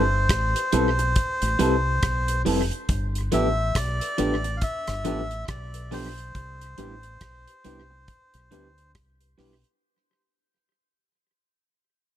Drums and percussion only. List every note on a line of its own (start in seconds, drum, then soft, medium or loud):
0.29 kick loud
0.29 cross-stick loud
0.29 closed hi-hat loud
0.56 closed hi-hat medium
0.72 closed hi-hat medium
0.99 closed hi-hat soft
1.16 kick loud
1.16 closed hi-hat medium
1.42 closed hi-hat medium
1.59 closed hi-hat medium
2.03 kick loud
2.03 cross-stick loud
2.03 closed hi-hat medium
2.28 closed hi-hat medium
2.46 open hi-hat medium
2.71 closed hi-hat soft
2.89 kick loud
2.89 closed hi-hat medium
3.15 closed hi-hat soft
3.32 closed hi-hat medium
3.75 kick loud
3.75 cross-stick loud
3.75 closed hi-hat loud
4.01 closed hi-hat medium
4.18 closed hi-hat medium
4.44 closed hi-hat soft
4.61 kick loud
4.61 closed hi-hat medium
4.87 cross-stick medium
4.87 closed hi-hat medium
5.05 closed hi-hat medium
5.31 closed hi-hat soft
5.48 kick loud
5.48 cross-stick loud
5.48 closed hi-hat medium
5.74 closed hi-hat medium
5.92 open hi-hat medium
6.18 closed hi-hat soft
6.35 kick medium
6.35 closed hi-hat medium
6.61 closed hi-hat soft
6.78 closed hi-hat medium
7.03 closed hi-hat soft
7.21 kick loud
7.21 cross-stick loud
7.21 closed hi-hat loud
7.48 closed hi-hat medium
7.64 closed hi-hat medium
8.08 kick loud
8.08 closed hi-hat medium
8.34 closed hi-hat medium
8.52 closed hi-hat medium
8.78 closed hi-hat soft
8.95 kick loud
8.95 cross-stick loud
8.95 closed hi-hat loud
9.21 closed hi-hat medium
9.39 cross-stick medium
9.39 open hi-hat medium
9.64 closed hi-hat soft